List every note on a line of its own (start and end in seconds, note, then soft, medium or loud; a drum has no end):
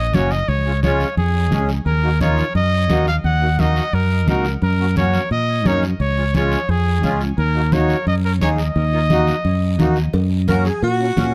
0.00 0.14 A#1 medium
0.00 0.16 D#5 loud
0.14 0.42 F#1 medium
0.14 0.32 A#3 medium
0.14 0.32 C#4 medium
0.14 0.32 F#4 medium
0.14 0.33 C#5 medium
0.14 high conga medium
0.14 short guiro medium
0.31 0.50 D#5 medium
0.31 short guiro medium
0.48 1.03 C#2 medium
0.48 0.82 C#5 medium
0.48 high conga soft
0.48 long guiro medium
0.65 0.72 G#3 medium
0.65 0.72 C#4 medium
0.65 0.72 F4 medium
0.83 1.07 G#3 medium
0.83 1.07 C#4 medium
0.83 1.07 F4 medium
0.83 1.15 C#5 medium
0.83 high conga medium
0.83 short guiro medium
1.00 short guiro medium
1.17 1.52 F2 medium
1.17 1.66 G#4 medium
1.17 high conga soft
1.17 long guiro medium
1.51 1.79 C#2 medium
1.51 1.70 G#3 medium
1.51 1.70 C#4 medium
1.51 1.70 G#4 medium
1.51 high conga medium
1.51 short guiro medium
1.69 short guiro medium
1.86 2.41 D#2 medium
1.86 2.18 A#4 medium
1.86 high conga soft
1.86 long guiro medium
2.03 2.09 A#3 medium
2.03 2.09 D#4 medium
2.03 2.10 F#4 medium
2.20 2.45 A#3 medium
2.20 2.45 D#4 medium
2.20 2.45 F4 medium
2.20 2.53 C#5 medium
2.20 high conga medium
2.20 short guiro medium
2.38 short guiro medium
2.55 2.90 F#2 medium
2.55 3.03 D#5 loud
2.55 high conga soft
2.55 long guiro medium
2.89 3.17 D#2 medium
2.89 3.07 A#3 medium
2.89 3.08 D#4 medium
2.89 3.08 F#4 medium
2.89 high conga medium
2.89 short guiro medium
3.07 3.15 F5 medium
3.07 short guiro medium
3.24 3.79 D#2 medium
3.24 3.61 F#5 medium
3.24 high conga soft
3.24 long guiro medium
3.41 3.47 A#3 medium
3.41 3.48 D#4 medium
3.41 3.48 F#4 medium
3.58 3.82 A#3 medium
3.58 3.83 D#4 medium
3.58 3.83 F#4 medium
3.58 3.95 D#5 medium
3.58 high conga medium
3.58 short guiro medium
3.76 short guiro medium
3.93 4.28 F#2 medium
3.93 4.28 A#4 medium
3.93 high conga soft
3.93 long guiro medium
4.28 4.55 C#2 medium
4.28 4.46 A#3 medium
4.28 4.46 D#4 medium
4.28 4.46 F#4 medium
4.28 4.52 A#4 medium
4.28 high conga medium
4.28 short guiro medium
4.45 short guiro medium
4.62 5.17 F#2 medium
4.62 4.95 A#4 medium
4.62 high conga soft
4.62 long guiro medium
4.80 4.85 A#3 medium
4.80 4.86 C#4 medium
4.80 4.86 F#4 medium
4.96 5.21 A#3 medium
4.96 5.21 C#4 medium
4.96 5.21 F#4 medium
4.96 5.29 C#5 medium
4.96 high conga medium
4.96 short guiro medium
5.14 short guiro medium
5.31 5.65 A#2 medium
5.31 5.68 D#5 medium
5.31 high conga soft
5.31 long guiro medium
5.65 5.93 F#2 medium
5.65 5.84 A#3 medium
5.65 5.84 C#4 medium
5.65 5.84 D#4 medium
5.65 5.83 C#5 medium
5.65 high conga medium
5.65 short guiro medium
5.83 short guiro medium
6.00 6.55 C#2 medium
6.00 6.33 C#5 medium
6.00 high conga soft
6.00 long guiro medium
6.17 6.23 G#3 medium
6.17 6.23 C#4 medium
6.17 6.24 F4 medium
6.34 6.59 G#3 medium
6.34 6.59 C#4 medium
6.34 6.59 F4 medium
6.34 6.71 C#5 medium
6.34 high conga medium
6.34 short guiro medium
6.52 short guiro medium
6.69 7.03 F2 medium
6.69 7.21 G#4 medium
6.69 high conga soft
6.69 long guiro medium
7.03 7.31 C#2 medium
7.03 7.21 G#3 medium
7.03 7.22 C#4 medium
7.03 7.22 F4 medium
7.03 high conga medium
7.03 short guiro medium
7.21 short guiro medium
7.38 7.93 D#2 medium
7.38 7.75 A#4 medium
7.38 high conga soft
7.38 long guiro medium
7.55 7.61 A#3 medium
7.55 7.61 D#4 medium
7.55 7.62 F#4 medium
7.72 7.97 A#3 medium
7.72 7.97 D#4 medium
7.72 7.97 F#4 medium
7.72 8.07 C#5 medium
7.72 high conga medium
7.72 short guiro medium
7.89 short guiro medium
8.07 8.41 F#2 medium
8.07 8.15 D#5 medium
8.07 high conga soft
8.07 long guiro medium
8.25 8.32 A#4 medium
8.41 8.69 D#2 medium
8.41 8.59 A#3 medium
8.41 8.60 D#4 medium
8.41 8.60 G#4 medium
8.41 8.49 C#5 medium
8.41 high conga medium
8.41 short guiro medium
8.58 9.93 D#5 medium
8.58 short guiro medium
8.76 9.31 D#2 loud
8.76 high conga soft
8.76 long guiro medium
8.93 8.99 A#3 medium
8.93 8.99 D#4 medium
8.93 8.99 F4 medium
9.10 9.35 A#3 medium
9.10 9.35 D#4 medium
9.10 9.35 F#4 medium
9.10 high conga medium
9.10 short guiro medium
9.27 short guiro medium
9.45 9.79 F#2 medium
9.45 high conga soft
9.45 long guiro medium
9.79 10.07 D#2 medium
9.79 9.97 A#3 medium
9.79 9.98 D#4 medium
9.79 9.98 F#4 medium
9.79 high conga medium
9.79 short guiro medium
9.96 short guiro medium
10.13 10.69 F#2 medium
10.13 cowbell loud
10.13 high conga soft
10.13 long guiro medium
10.48 10.66 A#3 medium
10.48 10.67 C#4 medium
10.48 10.67 F#4 medium
10.48 10.65 A#4 medium
10.48 high conga medium
10.48 short guiro medium
10.65 10.82 G#4 medium
10.65 short guiro medium
10.82 11.10 A#2 medium
10.82 11.34 F#4 loud
10.82 cowbell medium
10.82 high conga soft
10.82 long guiro medium
10.99 11.06 A#3 medium
10.99 11.06 C#4 medium
10.99 11.06 F#4 medium
11.16 11.34 A#2 medium
11.16 11.34 A#3 medium
11.16 11.34 C#4 medium
11.16 11.34 F#4 medium
11.16 high conga medium
11.16 low timbale medium
11.16 short guiro medium